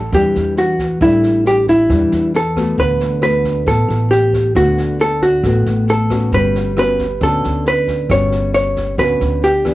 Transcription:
Already playing: nylon-string guitar A2, hollow-body jazz guitar A4
0.12 upright bass E2, nylon-string guitar E3 G3 D4 E4, hollow-body jazz guitar G4, kick, cross-stick, snare
0.35 upright bass E2, snare
0.57 hollow-body jazz guitar F#4, snare
0.79 kick, snare
1.01 upright bass A1, nylon-string guitar A2 G3 D4 E4, hollow-body jazz guitar E4, kick, cross-stick, snare
1.23 snare
1.45 hollow-body jazz guitar G4, snare
1.68 hollow-body jazz guitar E4, kick, snare
1.90 upright bass E2, nylon-string guitar E3 G3 D4 E4, kick, cross-stick, snare
2.12 upright bass E2, snare
2.34 hollow-body jazz guitar A4, snare
2.56 nylon-string guitar A3 B3 F#4, kick, cross-stick, snare
2.78 upright bass D2, nylon-string guitar D3, hollow-body jazz guitar B4, kick, snare
3.00 snare
3.22 nylon-string guitar A3 B3 F#4, hollow-body jazz guitar B4, cross-stick, snare
3.44 kick, snare
3.67 upright bass A1, nylon-string guitar A2 A3 B3, hollow-body jazz guitar A4, kick, cross-stick, snare
3.88 upright bass A1, snare
4.11 hollow-body jazz guitar G4, snare
4.33 kick, snare
4.55 upright bass D2, nylon-string guitar D3 A3 B3 F#4, hollow-body jazz guitar F#4, kick, cross-stick, snare
4.77 snare
5.00 hollow-body jazz guitar A4, snare
5.21 hollow-body jazz guitar F#4, kick, snare
5.44 upright bass A1, nylon-string guitar A2 A3 B3 F#4, kick, cross-stick, snare
5.66 upright bass A1, snare
5.88 hollow-body jazz guitar A4, snare
6.10 nylon-string guitar B3 C#4 F#4, kick, cross-stick, snare
6.32 upright bass G1, nylon-string guitar G3, hollow-body jazz guitar B4, kick, snare
6.55 snare
6.77 nylon-string guitar B3 C#4 F#4, hollow-body jazz guitar B4, cross-stick, snare
6.99 kick, snare
7.21 upright bass D2, nylon-string guitar D3 B3 C#4 F#4, hollow-body jazz guitar A4, kick, cross-stick, snare
7.44 upright bass D2, snare
7.65 hollow-body jazz guitar B4, snare
7.88 kick, snare
8.10 upright bass G1, nylon-string guitar G3 B3 C#4 F#4, hollow-body jazz guitar C#5, kick, cross-stick, snare
8.31 snare
8.54 hollow-body jazz guitar C#5, snare
8.76 kick, snare
8.98 upright bass D2, nylon-string guitar D3 B3 C#4 F#4, hollow-body jazz guitar B4, kick, cross-stick, snare
9.20 upright bass D2, snare
9.42 hollow-body jazz guitar G4, snare
9.65 nylon-string guitar E3 B3 D4, kick, cross-stick, snare

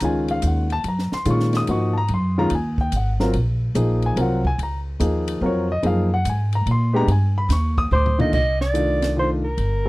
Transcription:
0.00 upright bass C#2, grand piano D#3 G#3 C#4 F4, hi-hat pedal, ride
0.05 grand piano G#5
0.28 grand piano F5, ride
0.42 upright bass D#2, hi-hat pedal, ride
0.47 grand piano F#5
0.70 grand piano A5, ride
0.84 upright bass F#2, ride
0.88 grand piano A#5
0.99 snare
1.12 grand piano C6, muted upright bass stroke, snare
1.25 upright bass A#2, grand piano D#3 G#3 C#4 F4, hi-hat pedal, ride
1.31 grand piano C#6
1.40 snare
1.53 grand piano D#6, snare, ride
1.67 upright bass G#2, grand piano F3 A#3 D#4 F#4 C#6, ride
1.93 grand piano A5
1.98 grand piano A#5
2.08 upright bass F#2, ride
2.14 grand piano C6
2.38 grand piano D#3 G#3 C#4 F4 A#5
2.50 upright bass D#2, ride
2.55 grand piano G#5
2.78 grand piano G5, kick
2.92 upright bass G#1, hi-hat pedal, ride
2.96 grand piano F#5
3.20 grand piano F#3 C4 F4 A#4, snare
3.33 upright bass A#1, ride
3.75 upright bass A#1, grand piano F3 A#3 D#4 G#4, hi-hat pedal, ride
4.02 grand piano G#5, ride
4.16 upright bass C2, grand piano F#3 C4 F4 A#4, ride
4.21 grand piano F#5
4.45 grand piano G#5, kick
4.58 upright bass C#2, ride
4.63 grand piano A#5
5.00 upright bass D#2, grand piano F3 A#3 D#4 G#4, hi-hat pedal, ride
5.28 ride
5.41 upright bass F2, grand piano F#3 C4 F4 A#4
5.46 grand piano C#5
5.72 grand piano D#5
5.83 upright bass F#2, grand piano F3 A#3 D#4 G#4 F5, ride
6.14 grand piano F#5
6.25 upright bass G#2, hi-hat pedal, ride
6.29 grand piano G#5
6.53 grand piano A#5, ride
6.66 upright bass A#2, ride
6.71 grand piano C6
6.93 grand piano G#3 B3 D4 G4 A#5
7.07 upright bass G2, ride
7.12 grand piano G#5
7.38 grand piano B5
7.49 upright bass D#2, snare, hi-hat pedal, ride
7.53 grand piano C#6
7.78 grand piano D#6, kick
7.91 upright bass D2, soprano saxophone C5, grand piano D6, floor tom
8.06 floor tom
8.18 grand piano A#2 D#3 A3 D4 F4, soprano saxophone D#5, floor tom
8.33 upright bass C2, soprano saxophone D#5, kick, crash
8.61 soprano saxophone D5, snare
8.74 grand piano D#3 A3 D4 F4, hi-hat pedal, ride
9.02 snare, ride
9.17 grand piano D#3 A3 D4 F4, soprano saxophone C5
9.44 soprano saxophone A#4
9.57 upright bass G1, ride
9.85 grand piano G3 C4 F4

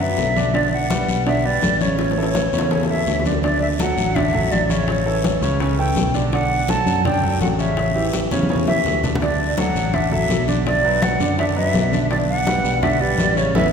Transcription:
Already playing: fingered electric bass F#2
0.00 grand piano F#3 F#4 B4, flute E5, high conga
0.18 fingered electric bass B1, high bongo, low bongo, high conga, short guiro
0.36 grand piano D3 D4 D5, high bongo, high conga, short guiro
0.54 grand piano D3 D4 D5, flute D5, high bongo, high conga, long guiro
0.72 flute F#5, high bongo, high conga
0.90 grand piano G3 G4 B4, high bongo, high conga, short guiro
1.08 fingered electric bass B1, high bongo, high conga, short guiro
1.26 grand piano D3 D4 D5, flute E5, high bongo, high conga, long guiro
1.45 grand piano G3 G4 B4, flute D5, high conga
1.62 fingered electric bass A1, high bongo, low bongo, high conga, short guiro
1.81 grand piano C#3 C#4 C#5, flute C#5, high bongo, high conga, short guiro
1.99 high bongo, high conga, long guiro
2.11 high bongo
2.17 grand piano E3 E4 A4, high conga
2.23 high bongo
2.35 high bongo, high conga, short guiro
2.53 fingered electric bass E2, grand piano C#3 C#4 C#5, high conga, short guiro
2.58 high bongo
2.71 grand piano C#3 C#4 C#5, low bongo, high conga, long guiro
2.83 low bongo
2.89 grand piano E3 E4 A4, flute E5, high conga
2.95 low bongo
3.07 fingered electric bass D2, low bongo, high conga, short guiro
3.19 low bongo
3.25 grand piano D3 D4 D5, high conga, short guiro
3.32 low bongo
3.43 grand piano D3 D4 D5, flute D5, high bongo, high conga, long guiro
3.61 flute E5, high conga
3.79 grand piano F#3 F#4 A4, flute F#5, high bongo, high conga, short guiro
3.97 fingered electric bass A1, high bongo, high conga, short guiro
4.15 grand piano D3 D4 D5, flute E5, high bongo, high conga, low conga, long guiro
4.34 grand piano F#3 F#4 A4, high bongo, high conga, low conga
4.52 fingered electric bass A1, flute D5, high bongo, low bongo, high conga, short guiro
4.69 grand piano C#3 C#4 C#5, flute C#5, high bongo, high conga, short guiro
4.88 high bongo, high conga, long guiro
5.06 grand piano E3 E4 A4, high conga
5.24 high bongo, high conga, short guiro
5.41 fingered electric bass C#2, grand piano C#3 C#4 C#5, high bongo, high conga, short guiro
5.60 grand piano C#3 C#4 C#5, high bongo, high conga, long guiro
5.78 grand piano E3 E4 A4, flute G5, high bongo, high conga
5.96 fingered electric bass B1, high bongo, low bongo, high conga, short guiro
6.14 grand piano D3 D4 D5, high bongo, short guiro
6.32 grand piano D3 D4 D5, flute F#5, high bongo, high conga, long guiro
6.51 high conga
6.68 grand piano F#3 F#4 A4, flute A5, high bongo, high conga, short guiro
6.86 fingered electric bass F#2, high bongo, high conga, short guiro
7.05 grand piano D3 D4 D5, flute G5, high bongo, high conga, low conga, long guiro
7.23 grand piano F#3 F#4 A4, high bongo, high conga, low conga
7.41 fingered electric bass A1, flute F#5, high bongo, low bongo, high conga, short guiro
7.59 grand piano C#3 C#4 C#5, flute E5, high bongo, short guiro
7.77 high bongo, high conga, long guiro
7.95 grand piano E3 E4 G4, high conga
8.13 high bongo, high conga, short guiro
8.31 fingered electric bass E2, grand piano C#3 C#4 C#5, high bongo, high conga, short guiro
8.43 high conga
8.49 grand piano C#3 C#4 C#5, high bongo, long guiro
8.55 low conga
8.67 grand piano E3 E4 G4, flute E5, low bongo, high conga
8.85 fingered electric bass D2, low bongo, short guiro
9.03 grand piano D3 D4 D5, low bongo, low conga, short guiro
9.15 low conga
9.22 grand piano D3 D4 D5, flute D5, high bongo, high conga, long guiro
9.40 high conga
9.58 grand piano F#3 F#4 A4, flute F#5, high bongo, high conga, short guiro
9.75 fingered electric bass A1, high bongo, high conga, short guiro
9.94 grand piano D3 D4 D5, flute E5, high bongo, high conga, low conga, long guiro
10.12 grand piano F#3 F#4 A4, flute E5, high bongo, high conga, low conga
10.29 fingered electric bass B1, high bongo, low bongo, high conga, short guiro
10.48 grand piano D3 D4 D5, high bongo, high conga, short guiro
10.66 flute D5, high bongo, high conga, long guiro
10.84 grand piano F#3 F#4 B4, high conga
11.02 flute F#5, high bongo, high conga, short guiro
11.20 fingered electric bass F#2, grand piano D3 D4 D5, high bongo, high conga, short guiro
11.38 grand piano D3 D4 D5, flute E5, high bongo, high conga, long guiro
11.56 grand piano F#3 F#4 B4, flute E5, high bongo, high conga
11.74 fingered electric bass B1, high bongo, low bongo, high conga, short guiro
11.92 grand piano D3 D4 D5, high bongo, high conga, short guiro
12.11 grand piano D3 D4 D5, flute D5, high bongo, high conga, long guiro
12.29 flute F#5, high conga
12.47 grand piano G3 G4 B4, high bongo, high conga, short guiro
12.64 fingered electric bass B1, high bongo, high conga, short guiro
12.83 grand piano D3 D4 D5, flute E5, high bongo, high conga, low conga, long guiro
13.01 grand piano G3 G4 B4, flute D5, high bongo, high conga
13.18 fingered electric bass A1, high bongo, low bongo, high conga, short guiro
13.37 grand piano C#3 C#4 C#5, flute C#5, high bongo, short guiro
13.55 fingered electric bass A1, grand piano B3 C#4 E4, flute E5, low bongo, high conga, long guiro

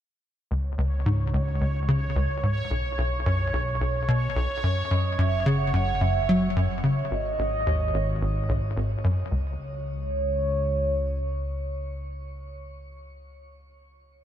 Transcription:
0.51 synth drone C#2, analog synth bass C#2, synth texture C#5
0.78 analog synth bass C#2
1.06 analog synth bass G#2
1.34 analog synth bass C#2
1.61 analog synth bass C#2
1.88 analog synth bass C#3
2.16 analog synth bass C#2
2.43 analog synth bass G#2
2.71 analog synth bass B1, synth drone B1
2.98 analog synth bass B1
3.26 analog synth bass F#2
3.53 analog synth bass B1
3.81 analog synth bass B1
4.08 analog synth bass B2
4.36 analog synth bass B1
4.63 analog synth bass F#2
4.91 synth drone F#1, analog synth bass F#2, soft synth lead D#5
5.18 analog synth bass F#2, soft synth lead E5
5.46 analog synth bass C#3, soft synth lead F#5
5.73 analog synth bass F#2
6.01 analog synth bass F#2, soft synth lead E5
6.29 analog synth bass F#3
6.56 analog synth bass F#2
6.84 analog synth bass C#3
7.11 synth drone G#1, analog synth bass G#1, soft synth lead D#5
7.39 analog synth bass G#1
7.67 analog synth bass D#2
7.94 analog synth bass G#1
8.22 analog synth bass G#1
8.49 analog synth bass B1
8.77 analog synth bass G#1
9.04 analog synth bass F#2
9.31 synth drone C#2, analog synth bass C#2, soft synth lead C#5

